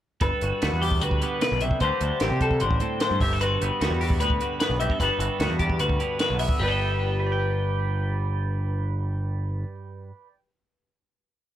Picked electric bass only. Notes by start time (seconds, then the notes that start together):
0.21 G1
0.42 G1
0.63 D2
0.73 E2
1.02 D2
1.52 B1
1.81 D2
2.01 D2
2.21 A1
2.31 C3
2.61 A1
3.11 G2
3.21 G1
3.61 G1
3.81 D2
3.91 E2
4.20 D2
4.70 B1
5.00 G1
5.19 G1
5.40 D2
5.50 E2
5.80 D2
6.30 B1
6.60 G1